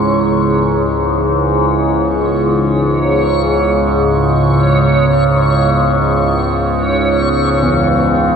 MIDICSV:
0, 0, Header, 1, 5, 480
1, 0, Start_track
1, 0, Key_signature, 4, "minor"
1, 0, Tempo, 500000
1, 8024, End_track
2, 0, Start_track
2, 0, Title_t, "Synth texture"
2, 0, Program_c, 0, 99
2, 0, Note_on_c, 0, 73, 82
2, 8024, Note_off_c, 0, 73, 0
2, 8024, End_track
3, 0, Start_track
3, 0, Title_t, "Ambient pad"
3, 0, Program_c, 1, 92
3, 0, Note_on_c, 1, 49, 70
3, 0, Note_on_c, 1, 59, 75
3, 0, Note_on_c, 1, 64, 73
3, 0, Note_on_c, 1, 68, 88
3, 8024, Note_off_c, 1, 49, 0
3, 8024, Note_off_c, 1, 59, 0
3, 8024, Note_off_c, 1, 64, 0
3, 8024, Note_off_c, 1, 68, 0
3, 8024, End_track
4, 0, Start_track
4, 0, Title_t, "Grand piano"
4, 0, Program_c, 2, 0
4, 0, Control_c, 2, 64, 127
4, 0, Note_on_c, 2, 64, 76
4, 2830, Note_off_c, 2, 64, 0
4, 7318, Note_on_c, 2, 40, 68
4, 8024, Note_off_c, 2, 40, 0
4, 8024, End_track
5, 0, Start_track
5, 0, Title_t, "Synth drone"
5, 0, Program_c, 3, 95
5, 0, Note_on_c, 3, 37, 77
5, 0, Note_on_c, 3, 44, 69
5, 8024, Note_off_c, 3, 37, 0
5, 8024, Note_off_c, 3, 44, 0
5, 8024, End_track
0, 0, End_of_file